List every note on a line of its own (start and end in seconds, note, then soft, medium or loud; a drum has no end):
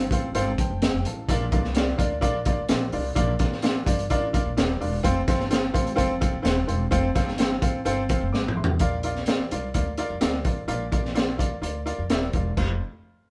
0.00 0.11 G1 medium
0.00 closed hi-hat medium
0.11 0.31 A1 medium
0.11 0.27 C4 medium
0.11 0.27 F4 medium
0.11 0.27 A4 medium
0.11 0.27 C5 medium
0.11 0.27 F5 loud
0.11 kick loud
0.11 closed hi-hat loud
0.35 0.54 G1 loud
0.35 0.50 C4 loud
0.35 0.50 F4 loud
0.35 0.50 A4 loud
0.35 0.50 C5 loud
0.35 0.51 F5 loud
0.35 closed hi-hat medium
0.58 0.82 C5 medium
0.58 0.80 G5 medium
0.58 0.81 A5 medium
0.58 muted upright bass stroke soft
0.58 kick loud
0.58 closed hi-hat medium
0.70 0.89 F1 medium
0.82 1.04 F5 medium
0.82 1.04 G5 medium
0.82 snare loud
0.82 closed hi-hat medium
0.94 1.03 F1 medium
1.05 1.25 A1 loud
1.05 1.51 A4 medium
1.05 1.29 F5 medium
1.05 1.28 A5 medium
1.05 closed hi-hat medium
1.28 1.48 A#1 loud
1.28 1.95 A#2 medium
1.28 1.44 D4 loud
1.28 1.44 F4 loud
1.28 1.45 A#4 loud
1.28 1.45 D5 loud
1.28 1.45 F5 loud
1.28 kick loud
1.28 closed hi-hat medium
1.51 1.91 C2 loud
1.51 1.67 D4 medium
1.51 1.67 F4 medium
1.51 1.68 A#4 medium
1.51 1.68 D5 medium
1.51 1.68 F5 loud
1.51 kick loud
1.51 closed hi-hat medium
1.64 snare soft
1.75 1.91 D4 medium
1.75 1.91 F4 medium
1.75 1.91 A#4 medium
1.75 1.92 D5 medium
1.75 1.92 F5 loud
1.75 snare loud
1.75 closed hi-hat medium
1.98 2.18 D2 loud
1.98 2.14 D4 loud
1.98 2.14 F4 medium
1.98 2.14 A#4 medium
1.98 2.14 D5 medium
1.98 2.14 F5 loud
1.98 kick loud
1.98 closed hi-hat loud
2.21 2.51 A#1 medium
2.21 2.37 D4 loud
2.21 2.37 F4 loud
2.21 2.38 A#4 loud
2.21 2.38 D5 loud
2.21 2.38 F5 loud
2.21 kick medium
2.21 closed hi-hat medium
2.45 2.62 D4 medium
2.45 2.61 F4 medium
2.45 2.62 A#4 medium
2.45 2.62 D5 medium
2.45 2.62 F5 loud
2.45 kick loud
2.45 closed hi-hat medium
2.58 2.68 D2 medium
2.69 2.89 A#1 loud
2.69 2.85 D4 medium
2.69 2.85 F4 medium
2.69 2.85 A#4 medium
2.69 2.85 D5 medium
2.69 2.85 F5 medium
2.69 snare loud
2.69 closed hi-hat medium
2.92 3.12 C2 loud
2.92 3.08 D4 medium
2.92 3.08 F4 medium
2.92 3.08 A#4 medium
2.92 3.09 D5 medium
2.92 3.09 F5 medium
2.92 open hi-hat medium
3.15 3.36 A#1 loud
3.15 3.83 A#3 medium
3.15 3.31 D4 loud
3.15 3.31 F4 loud
3.15 3.32 A#4 loud
3.15 3.32 D5 loud
3.15 3.32 F5 loud
3.15 kick loud
3.15 closed hi-hat loud
3.39 3.79 A1 medium
3.39 3.55 D4 loud
3.39 3.55 F4 medium
3.39 3.55 A#4 medium
3.39 3.55 D5 medium
3.39 3.56 F5 loud
3.39 kick loud
3.39 snare soft
3.39 closed hi-hat medium
3.52 snare soft
3.62 3.78 D4 loud
3.62 3.79 F4 medium
3.62 3.79 A#4 medium
3.62 3.79 D5 medium
3.62 3.79 F5 loud
3.62 snare loud
3.62 closed hi-hat medium
3.86 4.06 G1 medium
3.86 4.02 D4 medium
3.86 4.02 F4 medium
3.86 4.02 A#4 medium
3.86 4.02 D5 medium
3.86 4.02 F5 loud
3.86 kick loud
3.86 closed hi-hat loud
3.99 closed hi-hat medium
4.10 4.40 A1 loud
4.10 4.26 D4 loud
4.10 4.26 F4 loud
4.10 4.26 A#4 loud
4.10 4.26 D5 loud
4.10 4.26 F5 loud
4.10 kick medium
4.10 closed hi-hat medium
4.33 4.49 D4 medium
4.33 4.49 F4 medium
4.33 4.49 A#4 medium
4.33 4.49 D5 medium
4.33 4.50 F5 loud
4.33 kick loud
4.33 closed hi-hat medium
4.46 4.55 A#1 medium
4.57 4.77 D#1 medium
4.57 4.73 D4 medium
4.57 4.73 F4 medium
4.57 4.73 A#4 medium
4.57 4.73 D5 medium
4.57 4.73 F5 medium
4.57 snare loud
4.57 closed hi-hat medium
4.80 5.00 E1 medium
4.80 4.96 D4 medium
4.80 4.96 F4 medium
4.80 4.96 A#4 medium
4.80 4.96 D5 medium
4.80 4.97 F5 medium
4.80 open hi-hat medium
5.03 5.24 F1 loud
5.03 5.19 C4 loud
5.03 5.19 F4 loud
5.03 5.20 A4 loud
5.03 5.20 C5 loud
5.03 5.20 F5 loud
5.03 kick loud
5.03 closed hi-hat medium
5.28 5.67 G1 medium
5.28 5.43 C4 loud
5.28 5.43 F4 medium
5.28 5.43 A4 loud
5.28 5.44 C5 medium
5.28 5.44 F5 loud
5.28 kick loud
5.28 snare soft
5.28 closed hi-hat medium
5.40 snare soft
5.50 5.66 C4 medium
5.50 5.66 F4 medium
5.50 5.67 A4 medium
5.50 5.67 C5 medium
5.50 5.67 F5 loud
5.50 snare loud
5.50 closed hi-hat medium
5.73 5.98 A1 loud
5.73 5.89 C4 loud
5.73 5.90 F4 medium
5.73 5.90 A4 medium
5.73 5.90 C5 medium
5.73 5.90 F5 loud
5.73 kick medium
5.73 closed hi-hat loud
5.87 closed hi-hat medium
5.96 6.27 F1 loud
5.96 6.12 C4 loud
5.96 6.13 F4 loud
5.96 6.13 A4 loud
5.96 6.13 C5 loud
5.96 6.13 F5 loud
5.96 kick medium
5.96 closed hi-hat medium
6.20 6.37 C4 medium
6.20 6.37 F4 medium
6.20 6.37 A4 medium
6.20 6.37 C5 medium
6.20 6.37 F5 loud
6.20 kick loud
6.20 closed hi-hat medium
6.33 6.43 A1 medium
6.42 6.65 D#1 loud
6.42 6.59 C4 medium
6.42 6.59 F4 medium
6.42 6.60 A4 medium
6.42 6.60 C5 medium
6.42 6.60 F5 loud
6.42 snare loud
6.42 closed hi-hat loud
6.67 6.88 E1 medium
6.67 6.83 C4 medium
6.67 6.84 F4 medium
6.67 6.84 A4 medium
6.67 6.84 C5 medium
6.67 6.84 F5 medium
6.67 closed hi-hat medium
6.91 7.12 F1 loud
6.91 7.07 C4 loud
6.91 7.07 F4 loud
6.91 7.07 A4 loud
6.91 7.07 C5 loud
6.91 7.08 F5 loud
6.91 kick loud
6.91 closed hi-hat loud
7.15 7.55 G1 medium
7.15 7.31 C4 loud
7.15 7.31 F4 medium
7.15 7.31 A4 medium
7.15 7.31 C5 medium
7.15 7.31 F5 loud
7.15 kick loud
7.15 snare soft
7.15 closed hi-hat medium
7.28 snare soft
7.38 7.54 C4 medium
7.38 7.55 F4 medium
7.38 7.55 A4 medium
7.38 7.55 C5 medium
7.38 7.55 F5 loud
7.38 snare loud
7.38 closed hi-hat medium
7.61 7.82 A1 medium
7.61 7.78 C4 medium
7.61 7.78 F4 medium
7.61 7.78 A4 medium
7.61 7.78 C5 medium
7.61 7.78 F5 loud
7.61 kick loud
7.61 closed hi-hat medium
7.85 8.15 G1 loud
7.85 8.01 C4 loud
7.85 8.01 F4 loud
7.85 8.01 A4 loud
7.85 8.02 C5 loud
7.85 8.02 F5 loud
7.85 closed hi-hat medium
8.09 8.25 C4 medium
8.09 8.25 F4 medium
8.09 8.25 A4 medium
8.09 8.25 C5 medium
8.09 8.25 F5 loud
8.09 kick loud
8.09 closed hi-hat medium
8.21 8.33 F1 medium
8.33 8.52 G#1 medium
8.33 8.56 F5 medium
8.33 8.55 D6 medium
8.33 snare medium
8.48 mid tom medium
8.56 8.76 A1 medium
8.56 9.02 E5 soft
8.56 9.01 C6 medium
8.64 floor tom loud
8.79 9.19 A#1 loud
8.79 9.47 A#2 medium
8.79 8.96 F4 loud
8.79 8.96 A#4 medium
8.79 8.96 D5 loud
8.79 8.96 F5 loud
8.79 kick loud
8.79 closed hi-hat medium
9.03 9.19 F4 medium
9.03 9.19 A#4 medium
9.03 9.20 D5 medium
9.03 9.20 F5 loud
9.03 closed hi-hat medium
9.16 snare soft
9.26 9.43 F4 medium
9.26 9.43 A#4 medium
9.26 9.43 D5 medium
9.26 9.43 F5 loud
9.26 snare loud
9.26 closed hi-hat medium
9.39 muted upright bass stroke soft
9.51 9.71 C2 medium
9.51 9.67 F4 medium
9.51 9.67 A#4 medium
9.51 9.67 D5 medium
9.51 9.67 F5 medium
9.51 closed hi-hat medium
9.74 10.04 D2 loud
9.74 9.90 F4 medium
9.74 9.90 A#4 medium
9.74 9.90 D5 medium
9.74 9.90 F5 medium
9.74 kick medium
9.74 closed hi-hat medium
9.98 10.13 F4 loud
9.98 10.14 A#4 loud
9.98 10.14 D5 medium
9.98 10.14 F5 loud
9.98 closed hi-hat medium
10.10 10.20 F2 medium
10.21 10.41 D2 loud
10.21 10.37 F4 loud
10.21 10.37 A#4 loud
10.21 10.37 D5 loud
10.21 10.37 F5 loud
10.21 snare loud
10.21 closed hi-hat medium
10.45 10.65 A1 medium
10.45 10.61 F4 medium
10.45 10.61 A#4 medium
10.45 10.61 D5 medium
10.45 10.61 F5 medium
10.45 kick medium
10.45 closed hi-hat medium
10.68 11.36 A#1 loud
10.68 11.35 A#2 medium
10.68 10.84 F4 loud
10.68 10.84 A#4 loud
10.68 10.84 D5 loud
10.68 10.84 F5 loud
10.68 closed hi-hat medium
10.92 11.07 F4 medium
10.92 11.08 A#4 medium
10.92 11.08 D5 medium
10.92 11.08 F5 medium
10.92 kick loud
10.92 closed hi-hat medium
11.05 snare soft
11.15 11.31 F4 medium
11.15 11.31 A#4 medium
11.15 11.31 D5 medium
11.15 11.31 F5 medium
11.15 snare loud
11.15 closed hi-hat medium
11.38 11.59 D2 medium
11.38 11.54 F4 medium
11.38 11.55 A#4 medium
11.38 11.55 D5 medium
11.38 11.55 F5 medium
11.38 kick loud
11.38 closed hi-hat medium
11.62 11.92 D2 loud
11.62 11.78 F4 medium
11.62 11.78 A#4 medium
11.62 11.78 D5 medium
11.62 11.78 F5 medium
11.62 closed hi-hat medium
11.86 12.02 F4 loud
11.86 12.02 A#4 medium
11.86 12.02 D5 medium
11.86 12.02 F5 loud
11.86 closed hi-hat medium
11.98 12.08 F2 medium
12.10 12.30 D#1 medium
12.10 12.26 F4 loud
12.10 12.26 A#4 loud
12.10 12.26 D5 medium
12.10 12.26 E5 loud
12.10 snare loud
12.10 closed hi-hat medium
12.33 12.53 E1 medium
12.33 12.49 F4 medium
12.33 12.50 A#4 medium
12.33 12.50 D5 medium
12.33 12.50 F5 medium
12.33 kick medium
12.33 closed hi-hat medium
12.57 12.79 F1 medium
12.57 12.79 F2 medium
12.57 12.79 F4 medium
12.57 12.79 A4 medium
12.57 12.79 C5 medium
12.57 12.79 F5 medium
12.57 kick medium
12.57 crash medium